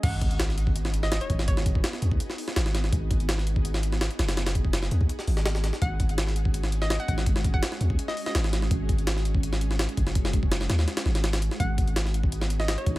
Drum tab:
CC |x---------------|----------------|----------------|----------------|
HH |x-xxx-x-x-x-xxx-|x-x-x-x-x-o-x-x-|x-xxx-x-x-x-xxxx|xxx-x-x-x-o-x-x-|
SD |----oo---o-oo--o|-o--oo---o-ooooo|----oo---o-oo-oo|oo--oo---o-ooooo|
BD |o-o----o------o-|o-oo---o--------|o-o----o--------|--oo---o--------|

CC |----------------|----------------|----------------|----------------|
HH |x-xxx-x-x-x-xxx-|x-x-x-x-x-o-x-x-|x-xxx-x-x-x-xxx-|x-x-x-x-xx-xxxx-|
SD |----oo---o-oo--o|-o--oo---o-ooooo|----oo---o-oo--o|-o--oooooooooo-o|
BD |o-o----o------o-|o-oo---o--------|o-o----o------o-|o-oo------------|

CC |----------------|
HH |x-xxx-x-x-x-xxx-|
SD |----oo---o-oo---|
BD |o-o----o------o-|